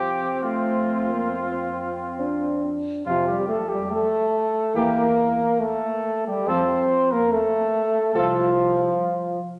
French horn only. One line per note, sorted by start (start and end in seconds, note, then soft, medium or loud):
0.00 2.59 C4 soft
3.06 3.26 F3 medium
3.29 3.48 G3 medium
3.48 3.58 A3 medium
3.71 3.90 G3 medium
3.91 4.77 A3 medium
4.75 5.61 A#3 medium
5.60 6.26 A3 medium
6.28 6.50 G3 medium
6.48 7.14 C4 medium
7.12 7.33 A#3 medium
7.31 8.15 A3 medium
8.15 9.39 F3 medium